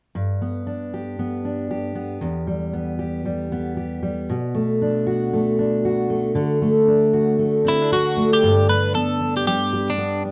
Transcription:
0.15 G2
0.42 B3
0.67 D4
0.94 G4
1.19 B3
1.45 D4
1.71 G4
1.95 B3
2.21 E2
2.47 G3
2.73 B3
2.99 G4
3.25 G3
3.52 B3
3.77 G4
4.03 G3
4.29 B2
4.55 A3
4.82 D4
5.07 F#4
5.33 A3
5.59 D4
5.85 F#4
6.10 A3
6.35 D3
6.62 A3
6.88 D4
7.13 F#4
7.39 A3
7.64 C4 E4
7.82 D4
7.92 F#4
8.17 A3
8.33 G4
8.43 G2
8.69 D4 B4
8.95 B3 A4
9.21 D4
9.37 G4
9.47 G3 G4
9.73 G4
9.90 D4
9.98 B3
10.25 D4

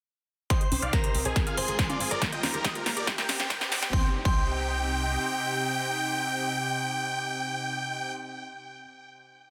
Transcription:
0.50 C3 C4 D#4 G4 C5 D#5 G5 C6, kick, snare, closed hi-hat, riser
0.61 G4 C5 C6, closed hi-hat
0.72 C2 C4 C5, open hi-hat, high conga
0.82 C2 C5 D5 F5 F6, closed hi-hat
0.93 C4 A#4 C5 A#5 C6, kick, snare, closed hi-hat
1.04 G4 C5 C6, closed hi-hat
1.14 C2 C4, open hi-hat
1.25 C2 G#4 C5 G#5, closed hi-hat
1.36 G#3 C4 F4 G#4, kick, snare, closed hi-hat
1.47 F4 G#4 F5 F6, closed hi-hat
1.57 G#1 C4 G#4 C5 G#5 C6, open hi-hat
1.68 G#1 G#4 G#5, closed hi-hat
1.79 C4 G#4 G#5, kick, snare, closed hi-hat
1.89 F4 D5 D6, closed hi-hat, high conga
2.00 G#1 C4 G#4 G#5, open hi-hat
2.11 G#1 G#4 A#4 D5 D6, closed hi-hat
2.22 D#3 A#3 G4 A#4, kick, snare, closed hi-hat
2.32 F4 D#5 G5 G6, closed hi-hat
2.43 D#2 A#3 A#4 A#5, snare, open hi-hat, high conga
2.54 D#2 G4 A#4 A#5, closed hi-hat
2.65 A#3 G4 D#5 D#6, kick, snare, closed hi-hat
2.75 F4 A#4 A#5, closed hi-hat
2.86 D#2 A#3 A#4 A#5, snare, open hi-hat
2.97 D#2 G4 A#4 D5 D6, closed hi-hat
3.07 C4 D4 G4 G5, kick, snare, closed hi-hat
3.18 G4 A#4 G5 G6, snare, closed hi-hat
3.29 G1 C4 G4 G5, snare, open hi-hat, high conga
3.40 G1 G4 C5 G5, snare, closed hi-hat, high conga
3.50 C4 A#4 G5 G6, kick, snare, closed hi-hat
3.61 G4 G5, snare, closed hi-hat, high conga
3.72 G1 C4 G4 G5, snare, open hi-hat
3.82 G1 G4 C5 G5, snare, closed hi-hat
3.93 C2 C3 C4 D#4 G4 G5 C6 G6, kick
4.25 C2 C4 G5 C6 G6, kick

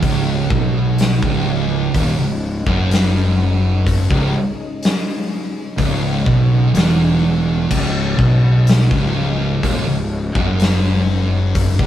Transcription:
Already playing: C#3 G#3 D#4
0.02 C#1 C#2, kick, open hi-hat
0.50 B1 B2, kick
0.98 snare, open hi-hat
1.23 C#1 C#2, kick
1.94 D#1 D#2, kick, open hi-hat
2.19 C#1 C#2
2.67 F#1 F#2, kick
2.91 snare, open hi-hat
3.87 kick, open hi-hat
4.10 C#1 C#2, kick
4.83 snare, open hi-hat
5.78 C#1 C#2, kick, open hi-hat
6.26 B1 B2, kick
6.74 E1 E2, snare, open hi-hat
7.71 C#1 C#2, kick, crash
8.18 B1 B2, kick
8.67 snare, open hi-hat
8.91 C#1 C#2, kick
9.63 D#1 D#2, kick, open hi-hat
9.88 C#1 C#2
10.35 F#1 F#2, kick
10.60 snare, open hi-hat
11.55 kick, open hi-hat
11.79 C#1 C#2, kick

